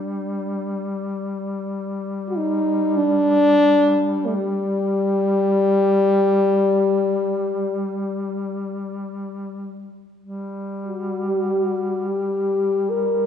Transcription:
0.00 10.02 G3 soft
0.00 0.91 D4 medium
2.29 2.38 F#4 medium
2.37 2.98 D#4 medium
2.96 4.28 D4 loud
4.27 4.37 A3 medium
4.35 9.17 G3 loud
10.20 13.26 G3 soft
10.87 12.09 F#4 medium
12.08 12.92 G4 medium
12.90 13.26 A#4 medium

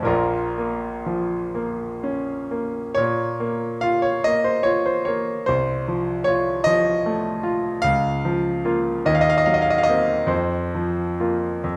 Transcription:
0.00 0.12 F2 medium
0.00 2.92 A#2 soft
0.00 0.11 F3 soft
0.00 0.12 A3 soft
0.00 0.12 C4 soft
0.00 0.12 A4 medium
0.00 0.12 C5 loud
0.05 2.94 A#1 medium
0.05 2.48 F4 medium
0.05 2.51 A#4 medium
0.58 1.37 A#3 soft
1.06 1.84 F3 soft
1.55 2.32 A#3 soft
2.03 2.81 C#4 soft
2.51 2.98 A#3 soft
2.95 5.43 A#2 soft
2.95 3.82 C#5 medium
3.40 4.09 A#3 soft
3.81 4.51 F4 soft
3.81 4.04 F5 medium
4.02 4.25 C#5 medium
4.24 4.92 A#3 soft
4.24 4.46 D#5 medium
4.44 4.66 C5 medium
4.63 5.31 F4 soft
4.63 4.85 C#5 medium
4.86 5.07 C5 medium
5.05 5.48 A#3 soft
5.05 5.47 C#5 medium
5.46 7.80 C2 soft
5.46 6.27 C5 medium
5.88 6.51 F3 soft
6.24 6.90 F4 soft
6.24 6.65 C#5 medium
6.64 7.28 F3 soft
6.64 7.82 D#5 medium
7.06 7.68 A3 soft
7.43 7.83 F4 soft
7.82 9.02 C#2 medium
7.82 9.04 F5 loud
8.25 8.90 F3 soft
8.65 9.02 A#3 soft
8.65 9.02 F4 soft
9.06 10.27 D#2 medium
9.06 9.14 D#5 medium
9.15 9.22 F5 medium
9.21 9.29 D#5 medium
9.30 9.37 F5 medium
9.38 9.45 D#5 medium
9.46 10.14 F#3 soft
9.46 9.54 F5 medium
9.54 9.62 D#5 medium
9.62 9.70 F5 medium
9.70 9.78 D#5 medium
9.78 9.86 F5 medium
9.83 10.30 D#5 medium
9.89 10.27 A#3 soft
9.89 10.27 C4 soft
10.27 11.57 F2 medium
10.27 11.77 C5 medium
10.75 11.46 F3 soft
11.20 11.60 A#3 soft
11.20 11.60 F4 soft
11.64 11.77 F2 soft

